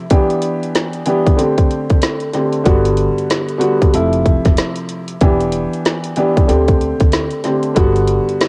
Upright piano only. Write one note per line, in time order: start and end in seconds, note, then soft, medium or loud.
0.10 1.00 E3 medium
0.10 1.01 B3 medium
0.10 1.01 D4 medium
0.10 1.01 G4 loud
1.06 1.38 E3 medium
1.06 1.38 B3 medium
1.06 1.39 D4 medium
1.06 1.37 G4 loud
1.36 2.27 D3 medium
1.36 2.27 A3 medium
1.36 2.28 C4 medium
1.36 2.28 G4 loud
2.33 2.62 D3 medium
2.33 2.64 A3 medium
2.33 2.64 C4 medium
2.33 2.64 G4 medium
2.64 3.55 D3 loud
2.64 3.55 G3 medium
2.64 3.55 B3 medium
2.64 3.56 F#4 loud
3.58 3.90 D3 medium
3.58 3.90 G3 medium
3.58 3.90 B3 medium
3.58 3.91 F#4 loud
3.93 5.13 C3 medium
3.93 5.13 F3 medium
3.93 5.14 A3 medium
3.93 5.14 E4 medium
5.21 6.11 E3 loud
5.21 6.11 B3 medium
5.21 6.12 D4 medium
5.21 6.12 G4 loud
6.17 6.49 E3 medium
6.17 6.49 B3 medium
6.17 6.49 D4 medium
6.17 6.47 G4 loud
6.47 7.38 D3 medium
6.47 7.38 A3 medium
6.47 7.38 C4 medium
6.47 7.39 G4 loud
7.44 7.73 D3 medium
7.44 7.74 A3 medium
7.44 7.75 C4 medium
7.44 7.75 G4 medium
7.74 8.48 D3 medium
7.74 8.48 G3 medium
7.74 8.48 B3 medium
7.74 8.48 F#4 loud